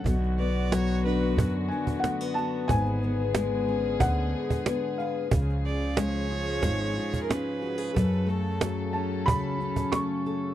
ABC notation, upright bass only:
X:1
M:4/4
L:1/8
Q:1/4=91
K:F#m
V:1 name="Upright bass" clef=bass
B,,,4 F,, z3 | G,,,4 D,, z3 | C,,4 G,,, z3 | F,,4 C,, z3 |]